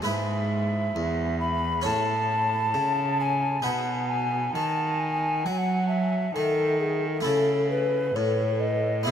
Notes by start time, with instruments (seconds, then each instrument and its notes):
0.02 harpsichord G#2 G#3 E4 B4
0.06 cello G#2, recorder E5
0.96 harpsichord E2, cello E2
1.40 recorder B5
1.82 harpsichord A2 C#4 C#5, cello A2, recorder A5
2.74 harpsichord C#3, cello C#3
3.20 recorder G#5
3.62 cello B2, harpsichord B2 D#4 B4, recorder F#5
4.09 recorder G#5
4.54 cello D#3, harpsichord D#3, recorder A5
5.00 recorder G#5
5.44 cello F#3, harpsichord F#3, recorder F#5
5.52 recorder G#5
5.58 recorder F#5
5.88 recorder E5
6.35 cello D#3, harpsichord D#3, recorder A4
6.80 recorder G#4
7.21 cello C#3, harpsichord A3 E4 A4
7.26 harpsichord C#3, recorder A4
7.71 recorder B4
8.15 cello A2, harpsichord A2, recorder C#5
8.60 recorder D#5
9.03 cello B2, harpsichord B3 E4 G#4, recorder E5
9.07 harpsichord B2